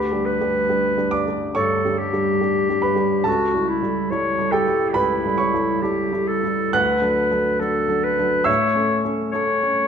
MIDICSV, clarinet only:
0, 0, Header, 1, 2, 480
1, 0, Start_track
1, 0, Tempo, 857143
1, 1829, Time_signature, 4, 2, 24, 8
1, 3263, Tempo, 914634
1, 3743, Tempo, 859599
1, 5493, End_track
2, 0, Start_track
2, 0, Title_t, "Clarinet"
2, 0, Program_c, 0, 71
2, 0, Note_on_c, 0, 67, 64
2, 143, Note_on_c, 0, 71, 65
2, 152, Note_off_c, 0, 67, 0
2, 718, Note_off_c, 0, 71, 0
2, 872, Note_on_c, 0, 69, 61
2, 1110, Note_on_c, 0, 67, 66
2, 1118, Note_off_c, 0, 69, 0
2, 1827, Note_off_c, 0, 67, 0
2, 1834, Note_on_c, 0, 66, 60
2, 2064, Note_on_c, 0, 64, 59
2, 2072, Note_off_c, 0, 66, 0
2, 2302, Note_on_c, 0, 73, 62
2, 2310, Note_off_c, 0, 64, 0
2, 2530, Note_on_c, 0, 69, 65
2, 2538, Note_off_c, 0, 73, 0
2, 2775, Note_on_c, 0, 64, 66
2, 2783, Note_off_c, 0, 69, 0
2, 3260, Note_on_c, 0, 67, 61
2, 3268, Note_off_c, 0, 64, 0
2, 3499, Note_on_c, 0, 69, 66
2, 3507, Note_off_c, 0, 67, 0
2, 3734, Note_off_c, 0, 69, 0
2, 3738, Note_on_c, 0, 71, 74
2, 4224, Note_on_c, 0, 69, 68
2, 4232, Note_off_c, 0, 71, 0
2, 4467, Note_on_c, 0, 71, 69
2, 4476, Note_off_c, 0, 69, 0
2, 4700, Note_on_c, 0, 73, 70
2, 4708, Note_off_c, 0, 71, 0
2, 5031, Note_off_c, 0, 73, 0
2, 5183, Note_on_c, 0, 73, 73
2, 5493, Note_off_c, 0, 73, 0
2, 5493, End_track
0, 0, End_of_file